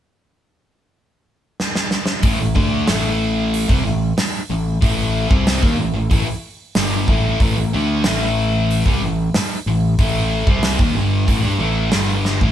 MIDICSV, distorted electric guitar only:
0, 0, Header, 1, 3, 480
1, 0, Start_track
1, 0, Tempo, 645856
1, 1666, Time_signature, 4, 2, 24, 8
1, 9303, End_track
2, 0, Start_track
2, 0, Title_t, "Distorted electric guitar"
2, 0, Program_c, 0, 30
2, 1656, Note_on_c, 0, 45, 84
2, 1664, Note_on_c, 0, 52, 99
2, 1771, Note_off_c, 0, 45, 0
2, 1778, Note_off_c, 0, 52, 0
2, 1780, Note_on_c, 0, 45, 66
2, 1787, Note_on_c, 0, 52, 73
2, 1893, Note_off_c, 0, 45, 0
2, 1895, Note_off_c, 0, 52, 0
2, 1896, Note_on_c, 0, 50, 93
2, 1898, Note_on_c, 0, 57, 103
2, 1901, Note_on_c, 0, 62, 114
2, 2134, Note_off_c, 0, 50, 0
2, 2135, Note_off_c, 0, 57, 0
2, 2136, Note_off_c, 0, 62, 0
2, 2138, Note_on_c, 0, 52, 94
2, 2139, Note_on_c, 0, 45, 81
2, 2147, Note_on_c, 0, 57, 91
2, 2733, Note_off_c, 0, 45, 0
2, 2734, Note_off_c, 0, 52, 0
2, 2736, Note_on_c, 0, 48, 79
2, 2738, Note_on_c, 0, 55, 96
2, 2739, Note_off_c, 0, 57, 0
2, 2853, Note_off_c, 0, 48, 0
2, 2855, Note_off_c, 0, 55, 0
2, 2856, Note_on_c, 0, 45, 63
2, 2865, Note_on_c, 0, 52, 68
2, 3053, Note_off_c, 0, 45, 0
2, 3057, Note_off_c, 0, 52, 0
2, 3344, Note_on_c, 0, 45, 70
2, 3350, Note_on_c, 0, 52, 75
2, 3536, Note_off_c, 0, 45, 0
2, 3539, Note_off_c, 0, 52, 0
2, 3574, Note_on_c, 0, 45, 94
2, 3579, Note_on_c, 0, 52, 110
2, 3584, Note_on_c, 0, 57, 122
2, 3927, Note_off_c, 0, 45, 0
2, 3930, Note_on_c, 0, 48, 86
2, 3934, Note_off_c, 0, 52, 0
2, 3937, Note_off_c, 0, 57, 0
2, 3940, Note_on_c, 0, 55, 93
2, 3941, Note_on_c, 0, 60, 86
2, 4170, Note_off_c, 0, 48, 0
2, 4175, Note_off_c, 0, 55, 0
2, 4176, Note_off_c, 0, 60, 0
2, 4177, Note_on_c, 0, 51, 88
2, 4180, Note_on_c, 0, 58, 96
2, 4294, Note_off_c, 0, 51, 0
2, 4295, Note_off_c, 0, 58, 0
2, 4309, Note_on_c, 0, 45, 66
2, 4312, Note_on_c, 0, 52, 73
2, 4408, Note_off_c, 0, 45, 0
2, 4416, Note_off_c, 0, 52, 0
2, 4417, Note_on_c, 0, 45, 62
2, 4425, Note_on_c, 0, 52, 69
2, 4525, Note_off_c, 0, 45, 0
2, 4532, Note_off_c, 0, 52, 0
2, 4534, Note_on_c, 0, 45, 85
2, 4541, Note_on_c, 0, 52, 108
2, 4652, Note_off_c, 0, 45, 0
2, 4655, Note_off_c, 0, 52, 0
2, 5024, Note_on_c, 0, 43, 91
2, 5031, Note_on_c, 0, 50, 97
2, 5031, Note_on_c, 0, 55, 102
2, 5257, Note_off_c, 0, 43, 0
2, 5259, Note_off_c, 0, 50, 0
2, 5260, Note_off_c, 0, 55, 0
2, 5262, Note_on_c, 0, 45, 93
2, 5266, Note_on_c, 0, 52, 98
2, 5270, Note_on_c, 0, 57, 113
2, 5496, Note_off_c, 0, 45, 0
2, 5498, Note_off_c, 0, 52, 0
2, 5500, Note_off_c, 0, 57, 0
2, 5506, Note_on_c, 0, 45, 102
2, 5508, Note_on_c, 0, 52, 99
2, 5618, Note_off_c, 0, 45, 0
2, 5619, Note_off_c, 0, 52, 0
2, 5630, Note_on_c, 0, 45, 63
2, 5635, Note_on_c, 0, 52, 72
2, 5744, Note_off_c, 0, 45, 0
2, 5747, Note_on_c, 0, 50, 91
2, 5749, Note_off_c, 0, 52, 0
2, 5752, Note_on_c, 0, 62, 106
2, 5753, Note_on_c, 0, 57, 105
2, 5978, Note_off_c, 0, 50, 0
2, 5981, Note_off_c, 0, 57, 0
2, 5981, Note_off_c, 0, 62, 0
2, 5982, Note_on_c, 0, 45, 88
2, 5989, Note_on_c, 0, 52, 87
2, 5994, Note_on_c, 0, 57, 96
2, 6576, Note_off_c, 0, 45, 0
2, 6579, Note_off_c, 0, 52, 0
2, 6582, Note_off_c, 0, 57, 0
2, 6590, Note_on_c, 0, 55, 101
2, 6593, Note_on_c, 0, 48, 81
2, 6700, Note_off_c, 0, 55, 0
2, 6701, Note_off_c, 0, 48, 0
2, 6712, Note_on_c, 0, 45, 54
2, 6715, Note_on_c, 0, 52, 67
2, 6900, Note_off_c, 0, 45, 0
2, 6902, Note_off_c, 0, 52, 0
2, 7191, Note_on_c, 0, 45, 68
2, 7195, Note_on_c, 0, 52, 82
2, 7380, Note_off_c, 0, 45, 0
2, 7382, Note_off_c, 0, 52, 0
2, 7426, Note_on_c, 0, 52, 98
2, 7428, Note_on_c, 0, 45, 90
2, 7433, Note_on_c, 0, 57, 106
2, 7777, Note_off_c, 0, 45, 0
2, 7779, Note_off_c, 0, 52, 0
2, 7780, Note_on_c, 0, 48, 90
2, 7782, Note_off_c, 0, 57, 0
2, 7784, Note_on_c, 0, 55, 86
2, 7787, Note_on_c, 0, 60, 99
2, 8016, Note_off_c, 0, 48, 0
2, 8018, Note_off_c, 0, 55, 0
2, 8019, Note_off_c, 0, 60, 0
2, 8024, Note_on_c, 0, 51, 82
2, 8030, Note_on_c, 0, 58, 96
2, 8138, Note_off_c, 0, 51, 0
2, 8138, Note_on_c, 0, 43, 83
2, 8140, Note_off_c, 0, 58, 0
2, 8144, Note_on_c, 0, 50, 89
2, 8149, Note_on_c, 0, 55, 119
2, 8370, Note_off_c, 0, 50, 0
2, 8373, Note_off_c, 0, 55, 0
2, 8373, Note_on_c, 0, 45, 90
2, 8375, Note_off_c, 0, 43, 0
2, 8376, Note_on_c, 0, 52, 109
2, 8487, Note_off_c, 0, 52, 0
2, 8490, Note_on_c, 0, 55, 78
2, 8493, Note_off_c, 0, 45, 0
2, 8497, Note_on_c, 0, 62, 94
2, 8611, Note_off_c, 0, 55, 0
2, 8615, Note_off_c, 0, 62, 0
2, 8615, Note_on_c, 0, 45, 82
2, 8616, Note_on_c, 0, 52, 93
2, 8620, Note_on_c, 0, 57, 82
2, 8850, Note_off_c, 0, 45, 0
2, 8852, Note_on_c, 0, 43, 93
2, 8853, Note_on_c, 0, 50, 98
2, 8855, Note_off_c, 0, 52, 0
2, 8857, Note_off_c, 0, 57, 0
2, 8861, Note_on_c, 0, 55, 103
2, 9214, Note_off_c, 0, 43, 0
2, 9214, Note_off_c, 0, 50, 0
2, 9218, Note_off_c, 0, 55, 0
2, 9227, Note_on_c, 0, 45, 90
2, 9235, Note_on_c, 0, 52, 90
2, 9303, Note_off_c, 0, 45, 0
2, 9303, Note_off_c, 0, 52, 0
2, 9303, End_track
3, 0, Start_track
3, 0, Title_t, "Muted distorted electric guitar strokes"
3, 3107, Note_on_c, 9, 29, 62
3, 3181, Note_off_c, 9, 29, 0
3, 4661, Note_on_c, 9, 29, 53
3, 4735, Note_off_c, 9, 29, 0
3, 6957, Note_on_c, 9, 29, 60
3, 7031, Note_off_c, 9, 29, 0
3, 9303, End_track
0, 0, End_of_file